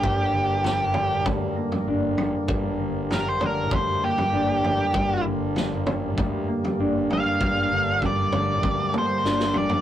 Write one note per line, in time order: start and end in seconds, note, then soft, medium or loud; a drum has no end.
0.00 1.25 G1 medium
0.00 2.48 G2 medium
0.00 0.64 G3 medium
0.00 1.56 A#3 medium
0.00 9.81 A#3 medium
0.00 1.88 D4 medium
0.00 9.81 D4 medium
0.00 1.25 G4 loud
0.00 9.81 G4 medium
0.00 9.81 A#4 medium
0.00 kick loud
0.00 floor tom medium
0.06 9.81 G2 medium
0.06 9.81 D3 medium
0.34 0.94 D3 medium
0.64 1.25 G3 medium
0.64 snare medium
0.64 floor tom medium
0.94 2.50 D3 medium
0.94 floor tom medium
0.94 mid tom medium
1.25 1.54 D2 medium
1.25 2.18 G3 medium
1.25 kick loud
1.25 floor tom medium
1.25 mid tom medium
1.56 4.03 A#3 medium
1.72 floor tom medium
1.87 2.16 G1 medium
1.87 4.33 D4 medium
2.17 2.32 G1 medium
2.17 3.10 G3 medium
2.17 floor tom medium
2.48 3.71 G1 medium
2.48 4.96 G2 medium
2.48 kick loud
2.48 floor tom medium
2.80 3.40 D3 medium
3.11 3.72 G3 medium
3.11 3.27 A#4 medium
3.11 snare medium
3.11 floor tom medium
3.29 3.43 C5 medium
3.41 4.95 D3 medium
3.41 floor tom medium
3.41 mid tom medium
3.46 3.74 A#4 medium
3.71 4.00 D2 medium
3.71 4.64 G3 medium
3.71 4.04 C5 medium
3.71 kick loud
3.71 floor tom medium
3.71 mid tom medium
4.03 6.48 A#3 medium
4.03 5.23 G4 loud
4.18 floor tom medium
4.33 4.61 G1 medium
4.33 6.80 D4 medium
4.63 4.78 G1 medium
4.63 5.57 G3 medium
4.63 floor tom medium
4.94 6.17 G1 loud
4.94 7.41 G2 medium
4.94 kick loud
4.94 floor tom medium
5.26 5.87 D3 medium
5.56 6.19 G3 medium
5.56 snare medium
5.56 floor tom medium
5.87 7.41 D3 medium
5.87 floor tom medium
5.87 mid tom medium
6.17 6.45 D2 medium
6.17 7.11 G3 medium
6.17 kick loud
6.17 floor tom medium
6.17 mid tom medium
6.48 8.94 A#3 medium
6.64 floor tom medium
6.80 7.07 G1 medium
6.80 9.24 D4 medium
7.10 7.24 G1 medium
7.10 8.02 G3 medium
7.10 8.01 F5 loud
7.10 floor tom medium
7.40 8.63 G1 loud
7.40 9.81 G2 medium
7.40 kick loud
7.40 floor tom medium
7.72 8.31 D3 medium
8.02 8.63 G3 medium
8.02 8.93 D5 medium
8.02 kick medium
8.02 floor tom medium
8.32 9.81 D3 medium
8.32 floor tom medium
8.32 mid tom medium
8.63 8.91 D2 medium
8.63 9.55 G3 medium
8.63 kick loud
8.63 high tom medium
8.94 9.81 A#3 medium
8.94 mid tom medium
8.98 9.56 C5 medium
9.24 9.52 G1 medium
9.24 9.81 D4 medium
9.24 snare medium
9.40 snare medium
9.54 9.68 G1 medium
9.54 9.81 G3 medium
9.54 9.81 D5 loud
9.54 floor tom medium
9.69 floor tom medium